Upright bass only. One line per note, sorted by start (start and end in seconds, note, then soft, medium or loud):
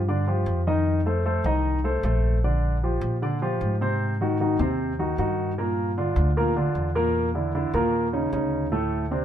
0.00 0.43 G2 medium
0.46 1.39 F2 medium
1.44 2.00 C2 medium
2.03 2.96 A#1 medium
3.01 3.57 A#2 medium
3.61 4.53 G#2 medium
4.59 5.14 D#2 medium
5.18 6.10 G2 medium
6.16 6.71 D2 medium
6.75 7.67 E2 medium
7.73 8.28 D#2 medium
8.33 9.25 D2 medium